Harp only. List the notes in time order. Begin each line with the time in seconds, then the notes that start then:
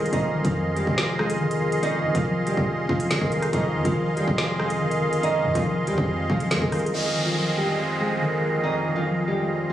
Already playing: F2 D#3 F3 C4
0.13 F2
0.34 D#3
0.55 F3
0.77 G#3
0.98 C4
1.40 D#3
1.62 F3
1.83 F2
2.04 D#3
2.25 F3
2.47 G#3
2.68 C4
3.11 D#3
3.32 F3
3.53 F2
3.74 D#3
3.96 F3
4.17 G#3
4.38 C4
4.81 D#3
5.02 F3
5.23 F2
5.44 D#3
5.66 F3
5.87 G#3
6.08 C4
6.51 D#3
6.72 F3
6.94 F2
7.15 D#3
7.36 F3
7.57 G#3
7.79 C4
8.21 D#3
8.42 F3
8.64 F2
8.85 D#3
9.06 F3
9.28 G#3
9.49 C4